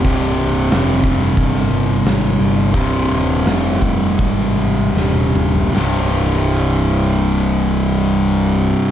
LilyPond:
<<
  \new Staff \with { instrumentName = "Distorted electric guitar" } { \clef bass \time 4/4 \key c \minor \tempo 4 = 80 <c, g, c>1 | <c, g, c>1 | <c, g, c>1 | }
  \new Staff \with { instrumentName = "Picked electric bass" } { \clef bass \time 4/4 \key c \minor c,,4 f,,4 g,,8 g,,8 aes,,8 g,,8 | c,,8 ees,,8 f,,4 aes,,4 ees,,4 | c,,1 | }
  \new DrumStaff \with { instrumentName = "Drums" } \drummode { \time 4/4 <hho bd>4 <hho sn>8 bd8 <hho bd>16 sn8. <hho sn>4 | <hho bd>4 <hho sn>8 bd8 <hho bd>16 sn8. sn16 tommh16 toml16 tomfh16 | <hho sn>4 r4 r4 r4 | }
>>